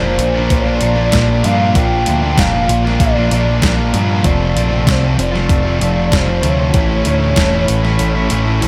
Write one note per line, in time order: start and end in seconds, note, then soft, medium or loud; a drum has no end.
0.00 0.17 F1 medium
0.00 0.20 A#2 medium
0.00 1.12 A#2 medium
0.00 0.20 F3 loud
0.00 0.21 F3 loud
0.00 0.23 A#3 loud
0.00 0.21 F4 medium
0.00 0.55 C5 loud
0.05 0.20 A#3 medium
0.05 0.21 D4 medium
0.18 0.47 A#1 medium
0.18 0.67 A#2 medium
0.18 0.38 F3 medium
0.18 muted overdriven electric guitar stroke medium
0.18 open hi-hat medium
0.23 0.34 A#3 medium
0.34 0.64 A#3 medium
0.34 0.66 A#3 medium
0.34 0.65 D4 medium
0.34 0.64 F4 medium
0.38 0.68 F3 medium
0.50 0.79 A#1 loud
0.50 1.46 D5 loud
0.50 kick loud
0.50 open hi-hat medium
0.64 0.83 A#3 medium
0.64 0.81 A#3 medium
0.64 0.83 D4 medium
0.64 0.84 F4 medium
0.69 0.83 F3 medium
0.81 1.10 A#1 medium
0.81 1.10 A#2 medium
0.81 1.12 F3 medium
0.81 1.00 F3 medium
0.81 1.12 A#3 medium
0.81 0.95 A#3 medium
0.81 1.13 D4 medium
0.81 1.14 F4 medium
0.81 open hi-hat medium
0.96 1.14 A#3 medium
1.00 1.13 F3 medium
1.11 1.42 A#1 loud
1.11 1.42 A#2 medium
1.11 1.74 A#2 medium
1.11 1.43 F3 loud
1.11 1.32 F3 medium
1.11 1.44 A#3 medium
1.11 1.27 A#3 loud
1.11 1.45 D4 loud
1.11 1.46 F4 medium
1.11 kick loud
1.11 snare loud
1.11 open hi-hat loud
1.29 1.45 F3 medium
1.29 1.46 A#3 medium
1.43 1.73 G2 loud
1.43 1.73 A#2 medium
1.43 1.75 F3 medium
1.43 1.76 F3 medium
1.43 1.61 A#3 medium
1.43 1.59 D4 medium
1.43 1.59 F4 medium
1.43 1.76 F5 loud
1.43 open hi-hat medium
1.47 1.77 A#3 medium
1.59 1.75 A#3 medium
1.59 1.76 D4 medium
1.59 1.77 F4 medium
1.74 2.04 A#1 loud
1.74 2.06 A#2 loud
1.74 2.35 A#2 medium
1.74 2.06 F3 loud
1.74 2.08 F3 loud
1.74 2.06 A#3 loud
1.74 2.09 A#3 loud
1.74 2.07 D4 loud
1.74 2.09 F4 loud
1.74 2.40 G5 loud
1.74 kick loud
1.74 open hi-hat loud
2.06 2.36 D2 medium
2.06 2.35 A#2 medium
2.06 2.37 F3 medium
2.06 2.26 F3 medium
2.06 2.37 A#3 medium
2.06 2.37 D4 medium
2.06 2.38 F4 medium
2.06 open hi-hat medium
2.10 2.22 A#3 loud
2.23 2.38 F3 medium
2.23 2.39 A#3 medium
2.36 2.67 F1 loud
2.36 2.84 A#2 loud
2.36 2.66 A#2 medium
2.36 2.68 F3 loud
2.36 2.69 F3 medium
2.36 2.55 A#3 loud
2.36 2.54 D4 loud
2.36 2.53 F4 loud
2.36 3.00 F5 loud
2.36 kick loud
2.36 snare loud
2.36 open hi-hat medium
2.40 2.70 A#3 medium
2.53 2.68 A#3 medium
2.53 2.68 D4 medium
2.53 2.69 F4 medium
2.68 2.98 A#1 medium
2.68 3.15 A#2 medium
2.68 2.85 F3 medium
2.68 2.82 A#3 medium
2.68 muted overdriven electric guitar stroke soft
2.68 open hi-hat medium
2.83 3.17 F3 medium
2.83 3.13 A#3 medium
2.83 3.16 D4 medium
2.83 3.14 F4 medium
2.87 3.17 A#3 medium
2.87 snare soft
3.00 3.29 A#1 loud
3.00 3.90 D5 loud
3.00 kick loud
3.00 open hi-hat medium
3.14 3.31 F3 medium
3.14 3.32 A#3 medium
3.14 3.33 D4 medium
3.14 3.33 F4 medium
3.18 3.31 A#3 medium
3.30 3.60 A#1 medium
3.30 3.59 A#2 medium
3.30 3.62 F3 medium
3.30 3.48 F3 medium
3.30 3.63 A#3 medium
3.30 3.45 A#3 medium
3.30 3.64 D4 medium
3.30 open hi-hat medium
3.34 3.64 F4 medium
3.46 3.62 F3 medium
3.46 3.63 A#3 medium
3.61 3.91 A#1 loud
3.61 3.92 A#2 medium
3.61 4.23 A#2 medium
3.61 3.79 F3 loud
3.61 3.93 F3 loud
3.61 3.94 A#3 medium
3.61 3.76 A#3 loud
3.61 kick loud
3.61 snare loud
3.61 open hi-hat medium
3.65 3.95 D4 medium
3.65 3.96 F4 loud
3.77 3.93 F3 medium
3.77 3.95 A#3 medium
3.93 4.22 G2 loud
3.93 4.23 A#2 medium
3.93 4.23 F3 medium
3.93 4.24 F3 medium
3.93 4.11 A#3 medium
3.93 4.24 A#3 medium
3.93 4.10 D4 medium
3.93 open hi-hat medium
3.97 4.09 F4 medium
4.10 4.25 A#3 medium
4.10 4.24 D4 medium
4.10 4.24 F4 medium
4.23 4.53 F1 loud
4.23 4.53 F2 loud
4.23 4.55 C3 loud
4.23 4.54 F3 loud
4.23 4.56 F3 loud
4.23 4.56 A3 loud
4.23 4.56 C4 loud
4.23 4.58 F4 loud
4.23 4.92 D5 loud
4.23 kick loud
4.23 open hi-hat medium
4.54 4.85 A#1 loud
4.54 4.84 F2 medium
4.54 4.72 C3 medium
4.54 4.85 F3 medium
4.54 4.68 F3 medium
4.54 4.87 A3 medium
4.54 4.88 C4 medium
4.54 open hi-hat medium
4.59 4.89 F4 medium
4.69 4.87 F3 medium
4.74 4.86 C3 medium
4.85 5.16 C2 loud
4.85 5.15 F2 medium
4.85 5.17 C3 loud
4.85 5.17 F3 loud
4.85 5.19 F3 loud
4.85 5.05 A3 loud
4.85 5.03 C4 loud
4.85 kick loud
4.85 snare loud
4.85 open hi-hat medium
4.90 5.01 F4 loud
4.90 5.20 C5 loud
5.03 5.18 A3 medium
5.03 5.17 C4 medium
5.03 5.17 F4 medium
5.17 5.47 F1 medium
5.17 5.64 F2 medium
5.17 5.35 C3 medium
5.17 5.32 F3 medium
5.17 muted overdriven electric guitar stroke soft
5.17 open hi-hat medium
5.23 6.18 D5 loud
5.32 5.64 F3 medium
5.32 5.66 A3 medium
5.32 5.64 C4 medium
5.32 5.62 F4 medium
5.32 snare soft
5.37 5.67 C3 medium
5.49 5.78 F1 medium
5.49 kick loud
5.49 open hi-hat medium
5.63 5.83 F3 medium
5.63 5.80 A3 medium
5.63 5.80 C4 medium
5.63 5.81 F4 medium
5.69 5.81 C3 medium
5.79 6.09 F1 loud
5.79 6.10 F2 medium
5.79 5.98 C3 medium
5.79 6.10 F3 medium
5.79 6.12 A3 medium
5.79 6.12 C4 medium
5.79 6.13 F4 medium
5.79 open hi-hat medium
5.84 5.94 F3 medium
5.95 6.12 C3 medium
5.95 6.13 F3 medium
6.11 6.41 F1 loud
6.11 6.40 F2 loud
6.11 6.29 C3 medium
6.11 6.41 F3 loud
6.11 6.26 F3 loud
6.11 6.43 A3 medium
6.11 6.43 C4 medium
6.11 6.44 F4 medium
6.11 kick loud
6.11 snare loud
6.11 open hi-hat medium
6.16 6.50 C5 loud
6.27 6.42 C3 medium
6.27 6.44 F3 medium
6.41 6.72 D2 medium
6.41 6.72 F2 medium
6.41 6.71 C3 medium
6.41 6.72 F3 medium
6.41 6.73 F3 medium
6.41 6.61 A3 medium
6.41 6.59 C4 medium
6.41 6.57 F4 medium
6.41 open hi-hat medium
6.48 8.64 C#5 loud
6.58 6.75 A3 medium
6.58 6.73 C4 medium
6.58 6.72 F4 medium
6.71 7.03 A1 medium
6.71 7.03 A2 loud
6.71 7.36 A2 medium
6.71 7.04 E3 loud
6.71 7.06 A3 loud
6.71 kick loud
6.71 open hi-hat medium
6.76 7.05 A3 loud
6.76 7.06 C#4 loud
6.76 7.07 E4 loud
7.04 7.34 D2 medium
7.04 7.34 A2 medium
7.04 7.36 E3 medium
7.04 7.22 E3 medium
7.04 7.37 A3 medium
7.04 7.18 A3 medium
7.04 7.38 C#4 loud
7.04 open hi-hat medium
7.08 7.39 E4 medium
7.19 7.36 E3 medium
7.19 7.37 A3 medium
7.35 7.65 E1 medium
7.35 7.65 A2 medium
7.35 7.84 A2 loud
7.35 7.67 E3 loud
7.35 7.68 A3 loud
7.35 7.54 A3 loud
7.35 kick loud
7.35 snare loud
7.35 open hi-hat loud
7.39 7.53 C#4 loud
7.39 7.51 E4 loud
7.52 7.67 A3 medium
7.52 7.68 C#4 medium
7.52 7.68 E4 medium
7.66 7.97 A1 medium
7.66 8.14 A2 medium
7.66 7.84 E3 medium
7.66 7.80 A3 medium
7.66 muted overdriven electric guitar stroke soft
7.66 open hi-hat medium
7.82 8.16 E3 medium
7.82 8.13 A3 medium
7.82 8.16 A3 medium
7.82 8.15 C#4 medium
7.82 8.14 E4 medium
7.82 snare soft
7.99 8.28 A1 medium
7.99 open hi-hat medium
8.14 8.30 E3 medium
8.14 8.31 A3 medium
8.14 8.30 A3 medium
8.14 8.31 C#4 medium
8.14 8.32 E4 medium
8.29 8.60 A1 medium
8.29 8.60 A2 medium
8.29 8.60 E3 medium
8.29 8.48 E3 medium
8.29 8.61 A3 medium
8.29 8.44 A3 medium
8.29 8.61 C#4 medium
8.29 8.62 E4 medium
8.29 open hi-hat medium
8.45 8.62 E3 medium
8.45 8.63 A3 medium
8.61 8.68 A1 loud
8.61 8.68 A2 loud
8.61 8.68 A2 medium
8.61 8.68 E3 medium
8.61 8.68 E3 loud
8.61 8.68 A3 medium
8.61 8.68 A3 loud
8.61 8.68 C#4 loud
8.61 8.68 E4 loud
8.61 open hi-hat medium